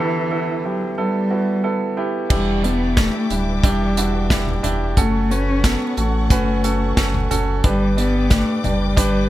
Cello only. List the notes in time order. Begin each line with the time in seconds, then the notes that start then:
Already playing: E3
0.65 F#3
0.99 G3
2.31 G3
2.64 B3
2.98 A3
3.31 G3
4.98 A3
5.31 C#4
5.64 B3
5.98 A3
7.65 G3
7.98 B3
8.32 A3
8.65 G3